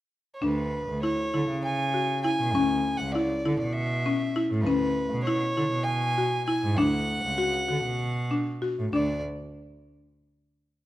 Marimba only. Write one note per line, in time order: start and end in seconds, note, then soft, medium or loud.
0.42 0.74 D4 medium
1.03 1.19 E4 medium
1.34 1.66 E4 medium
1.94 2.10 F#4 medium
2.24 2.41 E4 medium
2.55 2.87 C#4 medium
3.15 3.31 E4 medium
3.45 3.77 E4 medium
4.06 4.22 C#4 medium
4.36 4.52 E4 medium
4.67 4.98 C#4 medium
5.27 5.43 E4 medium
5.57 5.89 E4 medium
6.18 6.33 F#4 medium
6.48 6.63 E4 medium
6.78 7.10 D4 medium
7.38 7.54 F#4 medium
7.68 8.01 F#4 medium
8.31 8.47 D4 medium
8.62 8.78 F#4 medium
8.93 9.21 D4 medium